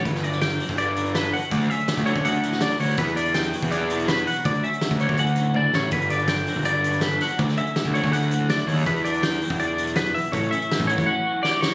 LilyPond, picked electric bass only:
\new Staff \with { instrumentName = "Picked electric bass" } { \clef bass \time 4/4 \key d \major \tempo 4 = 164 g,,4.~ g,,16 g,,2 r16 | d,8 r8. d,8 d,16 d,4. d,8 | e,4.~ e,16 e,2 r16 | d,8 r8. d,8 d,16 d,4. a,,8 |
g,,4.~ g,,16 g,,2 r16 | d,8 r8. d,8 d,16 d,4. ees,8 | e,4.~ e,16 e,2 r16 | a,,8 r8. a,,8 a,,16 r2 | }